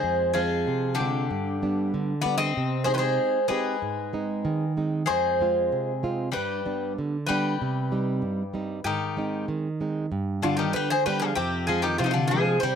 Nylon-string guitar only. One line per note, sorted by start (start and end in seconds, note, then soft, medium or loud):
0.03 0.65 F2 medium
0.35 0.86 G#3 soft
0.35 0.86 C4 soft
0.35 0.87 F4 medium
0.67 1.29 C3 medium
1.00 1.25 G#3 soft
1.00 1.25 C4 soft
1.00 1.25 F4 medium
1.31 1.92 G2 medium
1.63 2.13 G3 soft
1.63 2.13 B3 soft
1.63 2.13 D4 medium
1.94 2.55 D3 medium
2.25 2.50 G3 medium
2.25 2.50 B3 soft
2.25 2.51 D4 medium
2.57 3.18 C3 medium
2.87 3.38 C4 soft
2.87 3.38 D#4 medium
2.87 3.38 G4 soft
3.50 3.75 C4 soft
3.50 3.76 D#4 medium
3.50 3.76 G4 medium
3.82 4.43 G#2 medium
4.13 4.64 G#3 soft
4.13 4.64 C4 soft
4.13 4.64 D#4 medium
4.45 5.06 D#3 medium
4.77 5.02 G#3 soft
4.77 5.02 C4 soft
4.77 5.03 D#4 medium
5.09 5.70 F2 medium
5.41 5.91 G#3 soft
5.41 5.91 C4 soft
5.41 5.91 F4 medium
5.72 6.33 C3 medium
6.03 6.28 G#3 soft
6.03 6.28 C4 soft
6.03 6.29 F4 medium
6.36 6.96 G2 medium
6.66 7.16 G3 soft
6.66 7.16 B3 soft
6.66 7.16 D4 medium
6.98 7.59 D3 medium
7.30 7.54 G3 soft
7.30 7.54 B3 soft
7.30 7.55 D4 medium
7.62 8.22 C3 medium
7.92 8.42 G3 medium
7.92 8.42 C4 soft
7.92 8.42 D#4 medium
8.22 8.83 G2 medium
8.54 8.79 G3 soft
8.54 8.80 C4 soft
8.54 8.80 D#4 medium
8.85 9.46 G#2 medium
9.17 9.67 G#3 soft
9.17 9.68 C4 soft
9.17 9.68 D#4 soft
9.48 10.09 D#3 medium
9.81 10.05 G#3 soft
9.81 10.06 C4 soft
9.81 10.06 D#4 soft
10.12 10.72 G2 medium
10.43 10.93 G3 soft
10.43 10.93 B3 soft
10.43 10.94 D4 medium
10.75 11.35 D3 medium
11.07 11.31 G3 medium
11.07 11.31 B3 soft
11.07 11.32 D4 medium
11.37 11.97 F2 medium
11.69 12.19 F3 soft
11.69 12.19 G#3 soft
11.69 12.19 C4 medium
12.00 12.60 C3 medium
12.32 12.56 F3 medium
12.32 12.57 G#3 soft
12.32 12.57 C4 medium
12.63 12.75 C3 medium